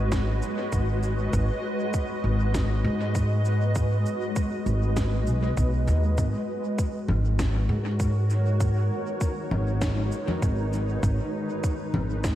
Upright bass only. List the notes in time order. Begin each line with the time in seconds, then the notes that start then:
Already playing: G#1
0.73 G#1
1.33 G#1
2.24 G#1
2.84 G#2
4.66 G#1
5.27 B1
5.57 B1
5.88 D#2
6.18 G#1
7.09 G#1
7.69 G#2
9.51 G#1
10.42 G#1
11.03 G#1
11.94 G#1